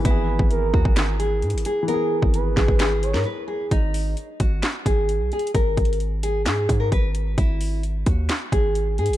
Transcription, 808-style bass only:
\new Staff \with { instrumentName = "808-style bass" } { \clef bass \time 4/4 \key e \lydian \tempo 4 = 131 gis,,8. gis,,8. dis,16 gis,,4~ gis,,16 gis,16 gis,,16 r8 | r8. gis,,8. gis,,16 gis,,4 gis,16 r4 | gis,,4 r8 gis,,8 r8 gis,,8. b,,16 r8 | gis,,8 gis,,4. gis,8 gis,8 gis,,4 |
gis,,4. dis,8 r8 gis,,4 gis,16 gis,,16 | }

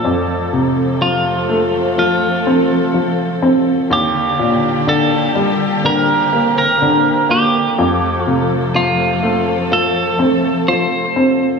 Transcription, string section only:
\new Staff \with { instrumentName = "String section" } { \time 4/4 \key f \mixolydian \tempo 4 = 62 << { <f a a'>1 | <d bes g'>1 | <f a a'>1 | } \\ { c'1 | d'2 c'2 | c'1 | } >> }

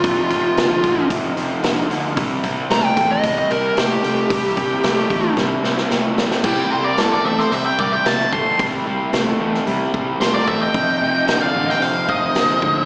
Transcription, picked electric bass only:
\new Staff \with { instrumentName = "Picked electric bass" } { \clef bass \time 4/4 \key c \mixolydian \tempo 4 = 112 f,,8 f,,8 f,,8 a,,8 f,,8 f,,8 f,,8 d,8 | c,8 c,8 c,8 e,8 c,8 c,8 c,8 c,8 | c,8 c,8 c,8 e,8 c,8 c,8 c,8 c,8 | c,8 c,8 c,8 e,8 c,8 c,8 c,8 c,8 |
c,8 c,8 c,8 e,8 c,8 c,8 c,8 e,8 | f,,8 f,,8 f,,8 a,,8 f,,8 f,,8 f,,8 d,8 | }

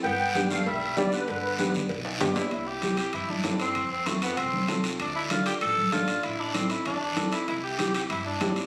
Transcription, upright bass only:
\new Staff \with { instrumentName = "Upright bass" } { \clef bass \time 4/4 \key c \major \tempo 4 = 193 g,,2 b,,4 d,4 | g,,2 b,,4 g,4 | c,2 g,4 g,4 | f,2 c,4 c,4 |
d,2 a,,4 a,,4 | a,,2 e,4 e,4 | c,2 g,4 g,4 | }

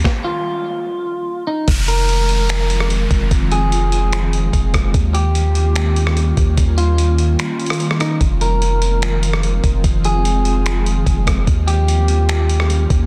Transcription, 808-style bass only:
\new Staff \with { instrumentName = "808-style bass" } { \clef bass \time 4/4 \key f \minor \tempo 4 = 147 r1 | f,,2.~ f,,8 f,,8 | f,,2. f,,8 f,,8 | ees,2.~ ees,8 ees,8 |
ees,2 r2 | f,,2.~ f,,8 f,,8 | f,,2. f,,8 f,,8 | ees,2.~ ees,8 ees,8 | }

